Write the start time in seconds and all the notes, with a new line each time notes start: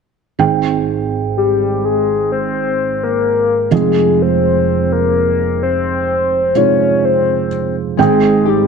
0.39 G#1 G#2 G#3 C4 D#4 G5
1.37 G4
1.85 G#4
2.32 C5
3.03 A#4
3.71 F1 F2 G#3 C4 D#4 F4 G#4
4.22 C5
4.92 A#4
5.63 C5
6.55 C3 G#3 D#4 F4 C#5
7.05 C5
7.97 G#1 G#2 G#3 C4 D#4 G#4 G5
8.46 C4 D#4 G4